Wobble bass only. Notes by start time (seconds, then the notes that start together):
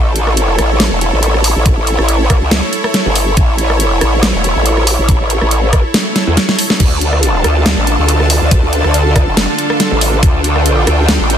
Already playing: A1
0.59 A1
0.92 E1
1.13 A1
1.56 A1
1.77 A1
1.99 A1
2.42 C#2
3.06 G1
3.37 A1
4.01 A1
4.34 E1
4.56 A1
4.99 A1
5.20 A1
5.42 A1
6.27 E2
6.80 D2
7.44 D2
7.77 A1
7.99 D2
8.41 D2
8.63 D2
8.84 D2
9.27 F1
9.91 A1
10.23 D2
10.87 D2
11.20 A1